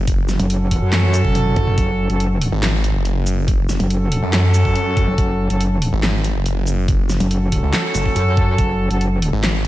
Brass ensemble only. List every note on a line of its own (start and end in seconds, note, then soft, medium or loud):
0.40 2.07 C#4 medium
0.40 2.07 F#4 medium
0.40 2.07 A4 loud
2.10 2.22 C#4 medium
2.10 2.22 F#4 medium
2.10 2.22 A4 medium
3.80 5.48 C#4 medium
3.80 5.48 F#4 medium
3.80 5.48 A4 loud
5.50 5.63 C#4 medium
5.50 5.63 F#4 medium
5.50 5.63 A4 medium
7.20 8.88 C#4 medium
7.20 8.88 F#4 medium
7.20 8.88 A4 loud
8.91 9.03 C#4 medium
8.91 9.03 F#4 medium
8.91 9.03 A4 medium